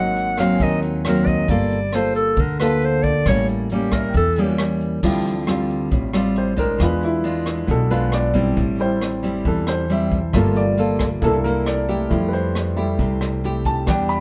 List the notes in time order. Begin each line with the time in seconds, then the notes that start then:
Already playing: G#1 G#2 F#3 A#3 C4 D#5 F#5
0.16 closed hi-hat
0.38 F#3 A#3 C4 F5, cross-stick, closed hi-hat
0.55 G#5
0.60 D#2 D#3 D#5, kick, closed hi-hat
0.82 F#4, closed hi-hat
1.05 F#3 A#3 C4 A#4, cross-stick, closed hi-hat
1.26 D#5, kick, closed hi-hat
1.48 G1 G3 A#3 F4 A4 D5, kick, closed hi-hat
1.71 closed hi-hat
1.93 A#3 F4 A4 C5, cross-stick, closed hi-hat
2.15 A4, closed hi-hat
2.36 D2 D3, kick, closed hi-hat
2.40 A#4
2.60 A#3 F4 A4 B4, cross-stick, closed hi-hat
2.81 C5, closed hi-hat
3.03 D5, kick, closed hi-hat
3.26 A1 A2 G3 A#3 C#4 C#5, kick, cross-stick, closed hi-hat
3.48 E4, closed hi-hat
3.69 G3 A#3 C#4 G4, closed hi-hat
3.92 A#4 E5, kick, cross-stick, closed hi-hat
4.09 G5
4.14 E2 E3 A4, kick, closed hi-hat
4.36 G3 A#3 C#4, closed hi-hat
4.58 cross-stick, closed hi-hat
4.81 closed hi-hat
5.03 D2 D3 F3 G3 C4 E4 F4, kick, crash
5.26 closed hi-hat
5.47 G3 C4 F4, cross-stick, closed hi-hat
5.70 closed hi-hat
5.91 A1 A2, kick, closed hi-hat
6.13 G3 C4 F4, cross-stick, closed hi-hat
6.36 C5, closed hi-hat
6.57 G#3 D4 A#4, kick, closed hi-hat
6.78 E2 E3 G#3 D4 F4, kick, cross-stick, closed hi-hat
6.83 B4
7.03 E4, closed hi-hat
7.23 G#3 D4 F4, closed hi-hat
7.46 cross-stick, closed hi-hat
7.67 B1 B2 A4, kick, closed hi-hat
7.90 G#3 D4 F4 B4, closed hi-hat
8.12 D5, cross-stick, closed hi-hat
8.34 G3 C4 E4, kick, closed hi-hat
8.57 A1 A2, kick, closed hi-hat
8.79 G3 C4 E4 C5, closed hi-hat
9.01 cross-stick, closed hi-hat
9.23 G3 C4 E4, closed hi-hat
9.45 E2 E3 A4, kick, closed hi-hat
9.67 C5, cross-stick, closed hi-hat
9.90 G3 C4 E4 E5, closed hi-hat
10.11 kick, closed hi-hat
10.33 G1 G3 A3 A#3 F4 A4, kick, cross-stick, closed hi-hat
10.56 D5, closed hi-hat
10.77 A#3 F4 A4, closed hi-hat
10.99 kick, cross-stick, closed hi-hat
11.22 C2 C3 A#3 D4 E4 A4, kick, closed hi-hat
11.44 A#3 E4 A4 A#4, closed hi-hat
11.66 D5, cross-stick, closed hi-hat
11.89 A3 E4 G4, closed hi-hat
12.09 F2 F3 G3 A3 E4, kick, closed hi-hat
12.29 B4
12.33 C5, closed hi-hat
12.55 cross-stick, closed hi-hat
12.76 G3 A3 E4 G4, closed hi-hat
12.99 C2 C3, kick, closed hi-hat
13.21 cross-stick, closed hi-hat
13.44 A3 E4 G4, closed hi-hat
13.65 A5, kick, closed hi-hat
13.86 E2 E3 G3 B3 D4 G4 G5, kick, cross-stick, closed hi-hat
14.09 B5, closed hi-hat